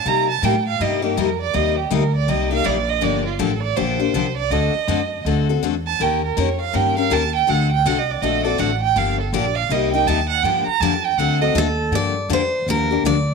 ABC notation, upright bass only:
X:1
M:4/4
L:1/8
Q:"Swing" 1/4=162
K:Gm
V:1 name="Upright bass" clef=bass
C,2 A,,2 G,,2 F,,2 | E,,2 D,,2 C,,2 B,,,2 | G,,,2 A,,,2 B,,,2 C,,2 | D,, z ^F,,2 D,,2 =E,,2 |
E,,2 F,,2 G,,2 E,,2 | D,,2 C,,2 B,,,2 A,,,2 | G,,,2 B,,,2 C,,2 E,,2 | G,, z F,,2 D,,2 E,,2 |
G,,2 F,,2 E,,2 D,,2 |]